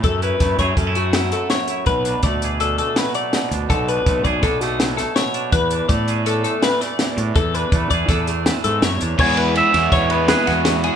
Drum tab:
CC |----------|----------|----------|----------|
RD |----------|----------|----------|----------|
HH |xxxxxxxxxx|xxxxxxxxxx|xxxxxxxxxx|xxxxxxxxxx|
SD |--o---o-o-|------o-o-|----ooooo-|------ooo-|
BD |o-ooo-----|o-o-------|o-ooo-----|o-o-------|

CC |----------|x---------|
RD |----------|-xxxxxxxxx|
HH |xxxxxxxxxx|----------|
SD |----o-o-o-|---oo-ooo-|
BD |o-ooo-----|o---o-----|